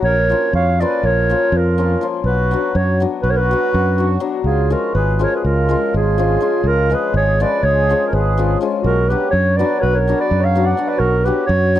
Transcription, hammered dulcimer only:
0.29 F3 A#3 C#4 F4
0.80 F3 A#3 C#4 F4
1.29 F3 A#3 C#4 F4
1.78 F3 A#3 C#4 F4
2.01 F3 A#3 C#4 F4
2.51 F#3 B3 D4 F#4
3.00 F#3 B3 D4 F#4
3.51 F#3 B3 D4 F#4
3.98 F#3 B3 D4 F#4
4.20 F#3 B3 D4 F#4
4.70 F3 G#3 C#4 F4
5.19 F3 G#3 C#4 F4
5.69 F3 G#3 C#4 F4
6.18 F3 G#3 C#4 F4
6.40 F3 G#3 C#4 F4
6.90 F3 G#3 C#4 F4
7.40 F3 G#3 C#4 F4
7.89 F3 G#3 C#4 F4
8.38 F3 G#3 C#4 F4
8.61 F3 G#3 C#4 F4
9.10 F#3 B3 D4 F#4
9.59 F#3 B3 D4 F#4
10.08 F#3 B3 D4 F#4
10.55 F#3 B3 D4 F#4
10.77 F#3 B3 D4 F#4
11.26 F#3 B3 D4 F#4
11.75 F#3 B3 D4

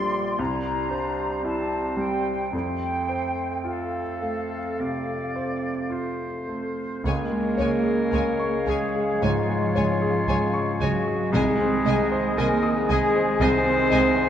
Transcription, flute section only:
Already playing: C6
0.40 A#5
1.44 A5
1.99 G5
2.56 G5
3.67 F5
7.07 F5
11.35 G#5

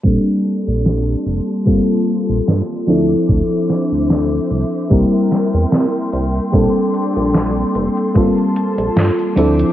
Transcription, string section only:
0.05 G4 D5 A5 C6
1.67 A#3
2.88 C5 E5 D6
4.91 A#4 G5 C6
6.53 A4 D5
8.15 A#3 A5
9.37 C5 E5 D6

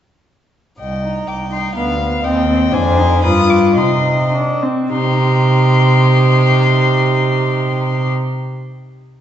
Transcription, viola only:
1.04 D#4
1.52 D#4
1.77 B3
2.01 B3
2.25 C4
2.49 C4
2.74 D4
2.98 D#4
3.24 F4
3.77 D#4
4.33 D4
4.63 C4
4.93 D#4

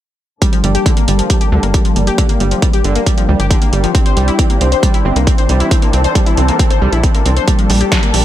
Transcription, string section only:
0.42 G3 A#3 D4 A4
2.18 G4
3.95 E3 C4
5.71 A4
7.48 G3 A#3 A4

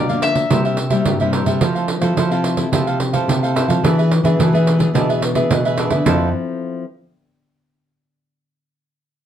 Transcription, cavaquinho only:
0.09 A#4 D5 F5
0.50 E4 A#4 C5 E5
0.65 A#4 C5 E5
0.78 muted cavaquinho stroke
0.91 A#4 C5 E5
1.21 A#4 C5 E5
1.33 E4 A#4 C5 E5
1.46 A#4 C5 E5
1.61 E4 A4 C5 F5
1.75 A4 C5 F5
1.89 muted cavaquinho stroke
2.01 A4 C5 F5
2.18 E4 A4 C5 F5
2.32 A4 C5 F5
2.73 E4 A4 C5 F5
2.87 A4 C5 F5
3.00 muted cavaquinho stroke
3.13 A4 C5 F5
3.43 A4 C5 F5
3.55 E4 A4 C5 F5
3.68 A4 C5 F5
3.84 D4 G#4 B4 E5
3.98 G#4 B4 E5
4.12 muted cavaquinho stroke
4.25 G#4 B4 E5
4.40 D4 G#4 B4 E5
4.55 G#4 B4 E5
4.95 D4 G#4 B4 E5
5.09 G#4 B4 E5
5.22 muted cavaquinho stroke
5.36 G#4 B4 E5
5.65 G#4 B4 E5
5.78 D4 G#4 B4 E5
5.91 G#4 B4 E5
6.06 E4 A4 C5 F5

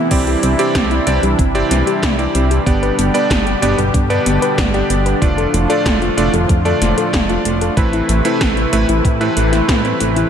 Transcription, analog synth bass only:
0.11 C2
0.43 C2
0.75 C2
1.07 C2
1.23 C2
1.39 G1
1.71 C2
2.03 C2
2.35 C2
2.66 G1
2.98 G1
3.30 G1
3.62 G1
3.78 G1
3.94 G2
4.26 G1
4.58 G1
4.90 G1
5.22 F1
5.54 F1
5.86 F1
6.17 F1
6.33 F1
6.49 F2
6.81 F1
7.13 F1
7.45 F1
7.77 A1
8.09 A1
8.41 A1
8.73 A1
8.89 A1
9.05 A2
9.37 A1
9.69 A2
10.00 A1

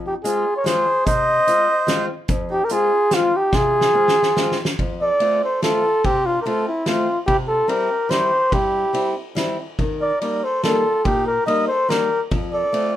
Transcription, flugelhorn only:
0.06 G4
0.24 G#4
0.56 C#5
0.66 C5
1.06 D#5
2.51 G4
2.64 A#4
2.72 G#4
3.14 F4
3.36 G4
3.55 G#4
5.01 D5
5.44 C5
5.64 A4
6.05 G4
6.26 F4
6.41 A#4
6.46 A4
6.68 E4
6.88 F4
7.26 G4
7.48 A4
7.69 A#4
8.10 C5
8.53 G4
10.01 D5
10.21 D5
10.44 C5
10.63 A4
11.05 G4
11.26 A#4
11.46 D#5
11.67 C5
11.89 A#4
12.53 D5

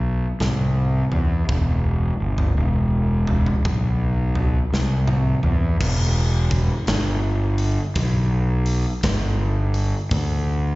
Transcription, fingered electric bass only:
Already playing: B1
0.41 C2
1.12 E2
1.49 E1
2.20 G1
2.57 E1
3.65 B1
4.72 C2
5.44 E2
5.81 E1
6.88 G1
7.96 B1
9.03 G1
10.12 D2

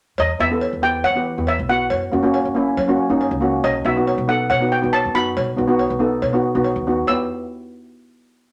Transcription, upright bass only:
0.18 E2
0.39 E2
0.73 E2
1.05 E3
1.38 E2
1.59 B1
1.91 F#2
2.13 F#2
2.45 F#2
2.77 F#3
3.10 F#2
3.31 C#2
3.64 B1
3.84 B1
4.18 B1
4.50 B2
4.83 B1
5.05 F#2
5.37 B1
5.58 B1
5.90 B1
6.22 B2
6.55 B1
6.76 D#2
7.08 E2

